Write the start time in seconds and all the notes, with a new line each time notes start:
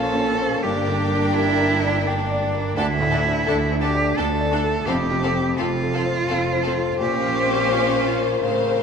Already playing: A#1 A#2 F3 A#3 C#4 A4 C5 F5
0.16 C#4
0.39 C5
0.63 G1 G2 D4 G4 A#4 G5
0.88 D3
1.13 D4
1.35 E4 G4
1.59 A#4
1.84 D5
2.07 D4 G5
2.31 D5
2.55 A#4
2.75 D2 A3 D4 E4 A4 A5
3.00 A2
3.10 D4 A4 A5
3.24 D4
3.46 D2 D4 A4 A5
3.72 D4
3.82 D4 G4 A4 A5
3.95 D5
4.17 D2 D4 A4 A5
4.41 D5
4.52 D4 A4 A5
4.64 A4
4.86 F1 F2 C4 G4 A4 C5 F5
5.11 C3
5.23 C4 A4 F5
5.35 C4
5.58 F1 F2 C4 F4 A4 F5
5.82 A4
5.94 C4 A4 F5
6.06 C5
6.29 F1 F2 C4 A4 F5
6.53 C5
6.64 C4 A4 F5
6.77 A4
6.99 A#1 A#2 C#4 G4 A#4 C5 F5
7.24 F3
7.47 C4
7.71 F4
7.95 A#4
8.07 F4
8.19 C5
8.42 A1 A2 C#3 C4 C5 F5
8.68 C5